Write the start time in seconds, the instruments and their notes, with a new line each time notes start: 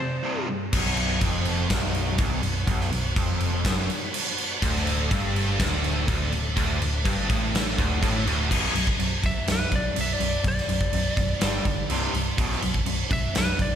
0.00 overdriven electric guitar F2 C3, lead electric guitar C5
0.24 overdriven electric guitar C2 G2 C3
0.49 overdriven electric guitar C2 G2
0.73 picked electric bass B0, overdriven electric guitar B1, tonewheel organ B3 F#4 C#5, kick, crash
0.86 snare
0.97 crash
1.21 picked electric bass F1, overdriven electric guitar F2, kick, crash
1.45 crash
1.70 picked electric bass B0, overdriven electric guitar B1, kick, snare, crash
1.95 crash
2.18 picked electric bass C1, overdriven electric guitar C2, kick, crash
2.43 picked electric bass B0, overdriven electric guitar B1, crash
2.67 picked electric bass B0, overdriven electric guitar B1, kick, crash
2.81 snare
2.91 picked electric bass B0, overdriven electric guitar B1, crash
3.16 picked electric bass F1, overdriven electric guitar F2, kick, crash
3.40 crash
3.65 picked electric bass F#1, overdriven electric guitar F#2, kick, snare, crash
3.90 crash
4.14 crash
4.38 crash
4.62 picked electric bass D1, overdriven electric guitar D2, tonewheel organ A3 D4 A4, kick, crash
4.76 snare
4.87 crash
5.11 picked electric bass G1, overdriven electric guitar G2, kick, crash
5.36 crash
5.60 picked electric bass D1, overdriven electric guitar D2, kick, snare, crash
5.84 crash
6.08 picked electric bass D1, overdriven electric guitar D2, kick, crash
6.32 picked electric bass D1, overdriven electric guitar D2, crash
6.56 picked electric bass D1, overdriven electric guitar D2, tonewheel organ B4, kick, crash
6.82 picked electric bass D1, overdriven electric guitar D2, crash
7.05 picked electric bass G1, overdriven electric guitar G2, kick, crash
7.30 picked electric bass A1, overdriven electric guitar A2, kick, crash
7.55 snare, crash
7.77 picked electric bass D1, overdriven electric guitar D2, kick, crash
8.02 picked electric bass A1, overdriven electric guitar A2, kick, crash
8.26 picked electric bass D1, overdriven electric guitar D2, crash
8.50 picked electric bass B0, overdriven electric guitar B1 F#2 B2, kick, crash
8.65 snare
8.74 picked electric bass B0, overdriven electric guitar B1 F#2, crash
8.87 kick
8.98 picked electric bass B0, overdriven electric guitar B1 F#2, crash
9.22 picked electric bass B0, overdriven electric guitar B1 F#2, lead electric guitar E5, kick, crash
9.47 picked electric bass B0, overdriven electric guitar B1 F#2, snare, crash
9.52 lead electric guitar B4
9.71 picked electric bass B0, overdriven electric guitar B1 F#2, kick, crash
9.76 lead electric guitar D5
9.95 overdriven electric guitar B1 F#2, picked electric bass B1, crash
10.01 lead electric guitar E5
10.13 lead electric guitar D5
10.19 picked electric bass B0, overdriven electric guitar B1 F#2, crash
10.44 picked electric bass B0, overdriven electric guitar B1 F#2, kick, crash
10.48 lead electric guitar D5
10.58 snare
10.68 picked electric bass B0, overdriven electric guitar B1 F#2, crash
10.81 kick
10.92 picked electric bass B0, overdriven electric guitar B1 F#2, crash
11.16 picked electric bass B0, overdriven electric guitar B1 F#2, kick, crash
11.40 picked electric bass G1, overdriven electric guitar G2 D3 G3, snare, crash
11.65 picked electric bass G1, overdriven electric guitar G2 D3, kick, crash
11.89 picked electric bass C1, overdriven electric guitar C2 G2 C3, crash
12.13 picked electric bass C1, overdriven electric guitar C2 G2, crash
12.38 picked electric bass B0, overdriven electric guitar B1 F#2 B2, kick, crash
12.52 snare
12.62 picked electric bass B0, overdriven electric guitar B1 F#2, crash
12.74 kick
12.86 picked electric bass B0, overdriven electric guitar B1 F#2, crash
13.11 picked electric bass B0, overdriven electric guitar B1 F#2, lead electric guitar E5, kick, crash
13.35 picked electric bass B0, overdriven electric guitar B1 F#2, lead electric guitar B4, snare, crash
13.59 picked electric bass B0, overdriven electric guitar B1 F#2, lead electric guitar D5, kick, crash